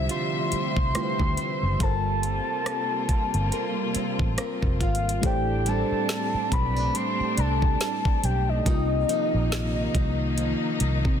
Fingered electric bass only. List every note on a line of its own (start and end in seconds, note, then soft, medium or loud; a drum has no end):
0.52 muted fingered electric bass stroke soft
0.77 0.92 C2 medium
0.95 muted fingered electric bass stroke soft
1.20 1.35 D2 medium
1.63 1.78 F#1 medium
1.81 2.39 G1 loud
3.09 muted fingered electric bass stroke soft
3.34 3.50 G1 medium
3.95 muted fingered electric bass stroke soft
4.20 4.35 A1 medium
4.63 4.81 F1 medium
4.81 5.18 G#1 medium
5.23 5.82 A1 loud
5.92 muted fingered electric bass stroke soft
6.34 muted fingered electric bass stroke medium
6.52 6.89 B1 loud
7.20 muted fingered electric bass stroke medium
7.38 7.75 C2 loud
8.24 8.60 B1 medium
8.66 9.03 C2 loud
9.34 9.87 A#1 medium
9.95 10.53 C2 medium
10.81 11.02 C2 loud
11.05 11.20 C3 loud